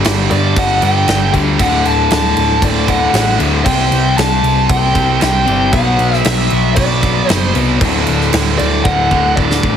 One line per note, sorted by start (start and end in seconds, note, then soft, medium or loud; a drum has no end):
0.00 0.81 G2 medium
0.00 0.82 D3 loud
0.00 0.80 G3 medium
0.05 0.27 G1 medium
0.05 snare loud
0.05 crash medium
0.31 0.53 G2 medium
0.31 0.58 D5 medium
0.31 crash medium
0.56 0.78 G1 medium
0.56 0.84 F#5 loud
0.56 kick loud
0.56 crash medium
0.81 1.04 G2 loud
0.81 1.05 G2 medium
0.81 1.07 D3 medium
0.81 1.06 G3 loud
0.81 1.32 G5 medium
0.81 crash medium
1.07 1.30 G1 loud
1.07 1.58 G2 medium
1.07 1.59 D3 medium
1.07 1.59 G3 medium
1.07 snare loud
1.07 crash medium
1.33 1.55 D2 medium
1.33 1.59 G2 medium
1.33 1.59 D3 medium
1.33 1.58 G3 loud
1.33 kick medium
1.33 crash medium
1.58 1.81 D1 medium
1.58 2.87 D2 medium
1.58 2.87 A2 loud
1.58 2.85 D3 loud
1.58 1.87 F#5 loud
1.58 kick loud
1.58 crash medium
1.85 2.07 D1 medium
1.85 2.11 A5 loud
1.85 crash medium
2.11 2.33 D1 loud
2.11 2.65 A5 loud
2.11 snare loud
2.11 crash loud
2.36 2.59 D1 loud
2.36 crash medium
2.62 3.06 D1 medium
2.62 2.88 D5 medium
2.62 kick loud
2.62 crash medium
2.86 3.11 D2 medium
2.86 3.13 A2 medium
2.86 3.12 D3 medium
2.86 3.38 F#5 medium
2.86 kick medium
2.86 crash medium
3.12 3.36 A1 medium
3.12 3.63 D2 medium
3.12 3.65 A2 medium
3.12 3.65 D3 medium
3.12 snare loud
3.12 crash medium
3.39 3.62 D2 medium
3.39 3.65 D2 medium
3.39 3.65 A2 medium
3.39 3.64 D3 medium
3.39 crash medium
3.63 3.88 C2 medium
3.63 4.93 C3 loud
3.63 4.94 G3 loud
3.63 4.93 C4 loud
3.63 4.17 G5 loud
3.63 kick loud
3.63 crash medium
3.91 4.14 C2 loud
3.91 crash medium
4.17 4.40 C2 medium
4.17 4.70 A5 loud
4.17 snare loud
4.17 crash medium
4.43 4.66 C2 medium
4.43 crash medium
4.69 4.92 C2 loud
4.69 5.21 G5 loud
4.69 kick loud
4.69 crash medium
4.95 5.17 C2 loud
4.95 5.19 C3 medium
4.95 5.21 G3 medium
4.95 5.20 C4 medium
4.95 kick medium
4.95 crash medium
5.20 5.44 C2 loud
5.20 5.71 C3 medium
5.20 5.72 G3 medium
5.20 5.73 C4 medium
5.20 5.73 G5 loud
5.20 snare loud
5.20 crash medium
5.46 5.70 G1 loud
5.46 5.72 C3 medium
5.46 5.72 G3 medium
5.46 5.71 C4 loud
5.46 crash medium
5.72 5.95 B1 loud
5.72 7.01 B2 loud
5.72 7.03 F#3 loud
5.72 7.00 B3 loud
5.72 6.16 F#5 loud
5.72 kick loud
5.72 crash medium
5.98 6.21 B1 medium
5.98 crash medium
6.13 6.25 E5 loud
6.13 snare soft
6.25 6.47 B1 medium
6.25 6.75 E5 medium
6.25 snare loud
6.25 crash loud
6.50 6.73 B1 medium
6.50 crash medium
6.76 7.21 B1 medium
6.76 7.31 D5 medium
6.76 kick loud
6.76 crash medium
7.01 7.26 B2 medium
7.01 7.28 F#3 medium
7.01 7.27 B3 loud
7.01 kick medium
7.01 crash medium
7.27 7.51 F#1 loud
7.27 7.79 B2 medium
7.27 7.82 F#3 medium
7.27 7.80 B3 medium
7.27 7.50 C5 medium
7.27 snare loud
7.27 crash medium
7.55 7.77 C2 loud
7.55 7.80 B2 medium
7.55 7.82 F#3 medium
7.55 7.80 B3 loud
7.55 crash medium
7.80 8.03 D1 medium
7.80 9.09 D2 medium
7.80 9.10 A2 medium
7.80 9.09 D3 loud
7.80 kick loud
7.80 crash medium
8.07 8.29 D1 medium
8.07 crash medium
8.20 snare soft
8.33 8.55 D1 medium
8.33 snare loud
8.33 crash medium
8.58 8.81 D2 medium
8.58 8.85 D5 medium
8.58 crash medium
8.84 9.07 D1 medium
8.84 9.38 F#5 loud
8.84 kick loud
9.11 9.33 D2 loud
9.11 9.36 A2 medium
9.11 9.35 D3 medium
9.11 kick medium
9.15 9.35 D2 medium
9.36 9.59 D1 medium
9.36 9.77 D2 medium
9.36 9.77 A2 medium
9.36 9.77 D3 medium
9.36 9.72 D5 medium
9.36 kick medium
9.51 snare medium
9.63 9.77 A1 medium
9.63 9.77 D2 medium
9.63 9.77 A2 medium
9.63 9.77 D3 medium
9.63 kick loud